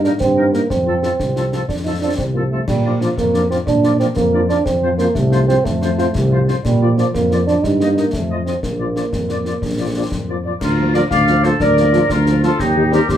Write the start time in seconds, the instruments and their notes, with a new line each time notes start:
Already playing: tuba G2
0.04 french horn section A#3 D#4, euphonium D4, woodwind section D#4 A#4, trumpet section A#4, snare
0.20 tuba G2, euphonium C4, concert bass drum, snare
0.36 french horn section A#3 D#4, woodwind section D#4 A#4, trumpet section A#4
0.53 euphonium A#3, french horn section A#3 D#4, woodwind section D#4 A#4, trumpet section A#4, snare
0.70 tuba F2, euphonium C4, concert bass drum, snare
0.86 french horn section F3 C4 F4, woodwind section F4 A4, trumpet section A4
1.03 french horn section F3 C4 F4, woodwind section F4 A4, trumpet section A4, snare
1.20 tuba C2, concert bass drum, snare
1.36 french horn section F3 C4 F4, woodwind section F4 A4, trumpet section A4, snare
1.52 french horn section F3 C4 F4, woodwind section F4 A4, trumpet section A4, snare
1.68 tuba F2, euphonium D4, concert bass drum, snare
1.84 french horn section F3 C4 F4, euphonium D#4, woodwind section F4 A4, trumpet section A4
2.01 french horn section F3 C4 F4, euphonium D4, woodwind section F4 A4, trumpet section A4
2.17 tuba C2, euphonium C4, concert bass drum, snare
2.33 french horn section F3 C4 F4, euphonium A#3, woodwind section F4 A4, trumpet section A4
2.51 french horn section F3 C4 F4, euphonium A3, woodwind section F4 A4, trumpet section A4
2.68 tuba A#2, euphonium G3, concert bass drum, snare, crash
2.84 french horn section F3 D4 F4, woodwind section F4 D5, trumpet section A#4
3.00 french horn section F3 D4 F4, euphonium F3, woodwind section F4 D5, trumpet section A#4, snare
3.18 tuba F2, euphonium A#3, concert bass drum, snare
3.34 french horn section F3 D4 F4, woodwind section F4 D5, trumpet section A#4, snare
3.49 french horn section F3 D4 F4, euphonium C4, woodwind section F4 D5, trumpet section A#4, snare
3.67 tuba A#2, euphonium D4, concert bass drum, snare
3.83 french horn section F3 D4 F4, woodwind section F4 D5, trumpet section A#4, snare
3.99 french horn section F3 D4 F4, euphonium C4, woodwind section F4 D5, trumpet section A#4, snare
4.16 tuba F2, euphonium A#3, concert bass drum, snare
4.33 french horn section F3 D4 F4, woodwind section F4 D5, trumpet section A#4
4.48 french horn section F3 D4 F4, euphonium D4, woodwind section F4 D5, trumpet section A#4, snare
4.65 tuba F2, euphonium C4, concert bass drum, snare
4.82 french horn section F3 C4 F4, woodwind section F4 C5, trumpet section C5
4.98 french horn section F3 C4 F4, euphonium A#3, woodwind section F4 C5, trumpet section C5, snare
5.15 tuba C2, euphonium A3, concert bass drum, snare
5.31 french horn section F3 C4 F4, woodwind section F4 C5, trumpet section C5, snare
5.47 french horn section F3 C4 F4, euphonium C4, woodwind section F4 C5, trumpet section C5, snare
5.65 tuba F2, euphonium A3, concert bass drum, snare
5.81 french horn section F3 C4 F4, woodwind section F4 C5, trumpet section C5, snare
5.97 french horn section F3 C4 F4, woodwind section F4 C5, trumpet section C5, snare
6.15 tuba C2, concert bass drum, snare
6.31 french horn section F3 C4 F4, woodwind section F4 C5, trumpet section C5
6.47 french horn section F3 C4 F4, woodwind section F4 C5, trumpet section C5, snare
6.65 tuba A#2, euphonium G3, concert bass drum, snare, crash
6.81 french horn section F3 A#3 F4, woodwind section F4 D5, trumpet section D5
6.97 french horn section F3 A#3 F4, euphonium F3, woodwind section F4 D5, trumpet section D5, snare
7.14 tuba F2, euphonium A#3, concert bass drum, snare
7.30 french horn section F3 A#3 F4, woodwind section F4 D5, trumpet section D5, snare
7.47 french horn section F3 A#3 F4, euphonium D4, woodwind section F4 D5, trumpet section D5, snare
7.63 tuba G2, euphonium D#4, concert bass drum, snare
7.80 french horn section A#3 D#4, woodwind section D#4 D#5, trumpet section D#5, snare
7.96 euphonium A#3, french horn section A#3 D#4, woodwind section D#4 D#5, trumpet section D#5, snare
8.12 tuba F2, euphonium A3, concert bass drum, snare
8.30 french horn section F3 C4 F4, woodwind section F4 D#5, trumpet section D#5
8.45 french horn section F3 C4 F4, euphonium C4, woodwind section F4 D#5, trumpet section D#5, snare
8.63 tuba A#1, euphonium A#3, concert bass drum, snare
8.79 french horn section F3 A#3 F4, woodwind section F4 D5, trumpet section D5
8.95 french horn section F3 A#3 F4, woodwind section F4 D5, trumpet section D5, snare
9.13 tuba F2, concert bass drum, snare
9.29 french horn section F3 A#3 F4, woodwind section F4 D5, trumpet section D5, snare
9.45 french horn section F3 A#3 F4, woodwind section F4 D5, trumpet section D5, snare
9.62 tuba A#1, concert bass drum, snare
9.79 french horn section F3 A#3 F4, woodwind section F4 D5, trumpet section D5
9.95 french horn section F3 A#3 F4, woodwind section F4 D5, trumpet section D5
10.12 tuba F2, concert bass drum, snare
10.28 french horn section F3 A#3 F4, woodwind section F4 D5, trumpet section D5
10.44 french horn section F3 A#3 F4, woodwind section F4 D5, trumpet section D5
10.60 tuba D2, woodwind section F4, trumpet section A#4, concert bass drum, snare, crash
10.77 french horn section F3 A#3 F4
10.94 trombone section F3 F4, french horn section F3 A#3 F4, woodwind section A#4, trumpet section D5, snare
11.10 tuba D2, woodwind section D5, trumpet section F5, concert bass drum, snare
11.27 french horn section F3 A#3 F4, snare
11.43 french horn section F3 A#3 F4, trombone section F3 F4, woodwind section A4, trumpet section C5, snare
11.60 tuba D2, woodwind section A#4, trumpet section D5, concert bass drum, snare
11.76 french horn section F3 A#3 F4, snare
11.93 french horn section F3 A#3 F4, trombone section F3 F4, snare
12.09 tuba D2, woodwind section F4, trumpet section A#4, concert bass drum, snare
12.26 french horn section F3 A#3 F4, snare
12.42 french horn section F3 A#3 F4, trombone section F3 F4, woodwind section F4, trumpet section A4, snare
12.59 tuba D#2, woodwind section D#4, trumpet section G4, concert bass drum, snare
12.75 french horn section D#3 D#4 G4
12.91 french horn section D#3 D#4 G4, trombone section G3 C4, woodwind section G4, trumpet section A#4, snare
13.09 tuba D#2, woodwind section G4, trumpet section C5, concert bass drum, snare